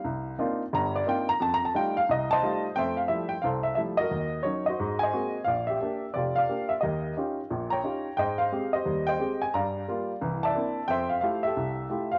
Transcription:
0.04 C2
0.38 A#3 C4 D4 D#4 F4
0.73 G1 G2 A#5
0.95 D5
1.06 A#3 C4 D4 D#4 F4 G5
1.29 A#5
1.40 F2 A5
1.54 A#5
1.65 A5
1.74 G3 A3 D#4 F4 G5
1.97 F5
2.09 C2 D#5
2.31 C5 D#5 A5
2.43 G3 A3 D#4 F4
2.76 F2 A3 C5 E5 G5
2.97 F5
3.08 F3 G3 A3 E4 E5
3.29 G5
3.42 C2 A4 C5 F5
3.63 E5
3.75 F3 G3 A3 E4 E5
3.97 F#4 A#4 D#5
4.11 D#2
4.43 F#3 C#4 D#4 C#5
4.66 F#4 C5 D#5
4.80 G#2
4.99 C5 G#5
5.03 D#5
5.13 G#3 A#3 C4 F#4
5.44 A#1 D5 F5
5.67 G4 E5
5.81 A#3 D4 G4
6.14 F1 F4 G4 D5
6.36 D5 F5
6.49 A#3 D4 G4
6.69 E5
6.80 D#2 G4 A#4 D#5
7.17 C#4 D#4 F4 G4
7.50 A#1 A#2
7.70 C#5 G5 A#5
7.83 C#4 D#4 F4 G4
8.17 G#2 C5 D#5 G5
8.38 C5 F5
8.52 G#3 C4 G4
8.73 G4 C5 D#5
8.86 D#2 G3
9.07 C5 D#5 G5
9.19 G#3 C4 G4
9.42 G#5
9.54 G2 D5 F5 A#5
9.88 G3 A#3 F4
10.21 C2 E3
10.43 D5 E5 A5
10.55 A#3 C4 D4 E4
10.88 F2 C5 E5 G5
11.10 F5
11.21 A3 E4 F4 G4 F5
11.43 G4 A4 E5
11.57 C2
11.90 A3 E4 F4 G4
12.11 C5 F5

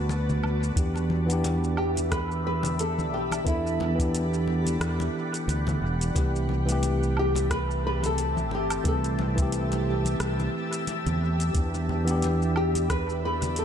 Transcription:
Already playing: D2 D3 A3 B3 F#4 A4 B4 D5 A5
0.09 muted conga, shaker
0.29 low conga, shaker
0.43 high conga, low woodblock
0.63 shaker
0.75 E2 E3 B3 D4 G4 D5 E5 B5, kick, closed hi-hat, shaker
0.96 muted conga, shaker
1.10 high conga
1.27 E3 B3, closed hi-hat
1.31 D4 G4, shaker
1.44 closed hi-hat, muted conga, shaker
1.64 shaker
1.77 G4, low woodblock
1.97 closed hi-hat, high conga, shaker
2.11 B4, kick, cross-stick, closed hi-hat, muted conga, shaker
2.31 shaker
2.47 B4
2.63 closed hi-hat, muted conga, low conga, shaker
2.79 A4, closed hi-hat, shaker
2.99 high conga, shaker
3.12 B1 G4
3.32 closed hi-hat, muted conga, low woodblock, shaker
3.44 E2 E3 B3 D4 E4 A4 F#5, kick, closed hi-hat, shaker
3.67 shaker
3.80 muted conga, high conga
3.96 E3 B3, kick
4.00 D4 G4, closed hi-hat, shaker
4.15 closed hi-hat, shaker
4.34 shaker
4.48 muted conga
4.66 closed hi-hat, high conga, shaker
4.80 E2, cross-stick, closed hi-hat, shaker
5.00 muted conga, shaker
5.34 closed hi-hat, shaker
5.48 D2, closed hi-hat, shaker
5.67 muted conga, high conga, low conga, shaker
5.82 E1
6.01 closed hi-hat, shaker
6.14 C2 E3 A3 C4 G4 E5 A5, kick, closed hi-hat, muted conga, shaker
6.36 shaker
6.49 high conga
6.66 E3 A3, closed hi-hat, shaker
6.70 C4 G4
6.83 closed hi-hat, muted conga, shaker
7.03 shaker
7.17 G4, low woodblock
7.35 closed hi-hat, muted conga, high conga, shaker
7.51 B4, kick, cross-stick, closed hi-hat, shaker
7.71 shaker
7.87 B4
8.03 A4, closed hi-hat, muted conga, low conga, shaker
8.18 closed hi-hat, shaker
8.37 high conga, shaker
8.51 G1 G4, muted conga
8.70 closed hi-hat, low woodblock, shaker
8.84 C2 E3 A3 C4 A4, kick, closed hi-hat, shaker
8.88 A4
9.04 closed hi-hat, shaker
9.19 muted conga, high conga
9.35 E3 A3, kick, closed hi-hat, shaker
9.40 C4 G4
9.52 closed hi-hat, shaker
9.72 closed hi-hat, muted conga, shaker
10.05 closed hi-hat, high conga, shaker
10.20 C2, cross-stick, closed hi-hat, shaker
10.40 muted conga, shaker
10.73 closed hi-hat, shaker
10.87 closed hi-hat, muted conga, shaker
11.06 E2, closed hi-hat, high conga, low conga, shaker
11.40 closed hi-hat, shaker
11.54 E2 E3 B3 D4 G4 D5 B5, kick, closed hi-hat, shaker
11.74 muted conga, shaker
11.89 high conga
12.05 E3 B3 D4, closed hi-hat, shaker
12.11 G4
12.22 closed hi-hat, muted conga, shaker
12.42 shaker
12.56 G4, low woodblock
12.75 closed hi-hat, high conga, shaker
12.90 B4, kick, cross-stick, closed hi-hat, muted conga, shaker
13.10 shaker
13.25 B4
13.42 closed hi-hat, muted conga, low conga, shaker
13.56 A4, closed hi-hat, shaker

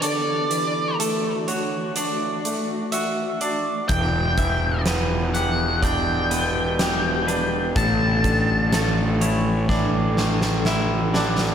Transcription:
Already playing: E3 D4 D5
0.02 D3 A3 F#4 A4 D5, closed hi-hat
0.50 E3, closed hi-hat
0.99 A3 A4, closed hi-hat
1.48 F#4 C#5, closed hi-hat
1.96 D4 D5, closed hi-hat
2.45 A3, closed hi-hat
2.92 F#4 E5, closed hi-hat
3.41 D4 D5, closed hi-hat
3.88 E1 E3 B3 D4 G4 G5, kick, closed hi-hat
4.38 E3 E5, kick, closed hi-hat
4.86 B3 B4, snare, closed hi-hat
5.34 G4 F#5, closed hi-hat
5.82 D4 D5 G5, kick, closed hi-hat
6.31 B3 B4, closed hi-hat
6.79 G4, snare, closed hi-hat
7.28 D4 B4, closed hi-hat
7.76 A1 A2 A3 A4 A5, kick, closed hi-hat
8.24 D3, kick, closed hi-hat
8.73 A3 A4, snare, closed hi-hat
9.21 E4 C#5, closed hi-hat
9.69 D4 D5, kick, snare
10.17 A3, snare
10.41 snare
10.65 E4 E5, snare
11.14 D4 D5, snare
11.38 snare

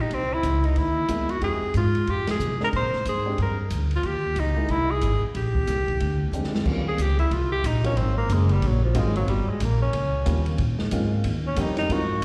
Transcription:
0.01 D#4
0.10 C2 C4, kick, ride
0.34 E4
0.43 C#2, kick, hi-hat pedal, ride
0.64 D#4, ride
0.76 D#2 E4, kick, ride
1.08 E2 G#3 A#3 D#4 E4, kick, hi-hat pedal, ride
1.29 F#4, ride
1.41 F2 G#3 C4 D#4 G4 G#4, kick, ride
1.61 muted upright bass stroke
1.74 G#2 F4, kick, hi-hat pedal, ride
1.95 ride
2.07 F2 G4, kick, ride
2.27 G#4, snare, ride
2.39 C3, hi-hat pedal
2.60 G#3 C4 D4 A#4, snare
2.64 A#4
2.73 A#2 C5, kick, ride
2.93 snare
3.05 G#2 G#4, kick, hi-hat pedal, ride
3.25 G#3 C4 D4 G4
3.38 G2, kick, ride
3.43 A#4
3.70 D2, kick, hi-hat pedal, ride
3.91 ride
3.96 F4
4.03 D#2 G4, kick, ride
4.36 C#2 D#4, kick, hi-hat pedal, ride
4.56 G#3 A#3 D#4 E4
4.68 C2 E4, kick, ride
4.91 G#4
5.01 G#1, kick, hi-hat pedal, ride
5.22 muted upright bass stroke
5.35 A#1 G4, kick, ride
5.55 kick
5.67 C2, kick, snare, hi-hat pedal, ride
5.88 kick, ride
6.00 D2, kick, ride
6.32 F2 G#3 C4 D4 G4, hi-hat pedal
6.44 snare
6.55 snare
6.65 D#2 G3 A#3 C4 C#4 F4, kick, crash
6.88 G#4
6.98 C#2 G4, kick, hi-hat pedal, ride
7.19 E4, ride
7.31 C2 F4, kick, ride
7.52 G4
7.64 A#1 D#4, kick, hi-hat pedal, ride
7.84 F#3 A#3 C4 C#4 D#4 F4, ride
7.97 G#1 C4, kick, ride
8.18 A#3
8.29 F#1, kick, hi-hat pedal, ride
8.33 G#3
8.49 G3, ride
8.62 A#1, kick, ride
8.67 F#3
8.84 F3
8.95 G#1 F#3 G#3 A#3 C4 D#4 F4, kick, hi-hat pedal, ride
9.16 F#3, ride
9.28 G1 G3, kick, ride
9.47 G#3, muted upright bass stroke
9.60 A#1 A#3, kick, hi-hat pedal, ride
9.82 C#4
9.93 C#2, kick, ride
10.26 D#2 G3 A#3 C4 C#4 F4, kick, hi-hat pedal, ride
10.46 ride
10.58 A#2, kick, ride
10.79 snare
10.91 G#2 G#3 A#3 C4 C#4 F4, kick, hi-hat pedal, ride
11.24 D#2, kick, ride
11.47 C#4
11.56 F2 G3 A#3 C4 C#4 D#4 G4, kick, hi-hat pedal, ride
11.77 D#4, snare, ride
11.89 G#2 F#3 A#3 C4 D#4 F4 F#4, kick, ride

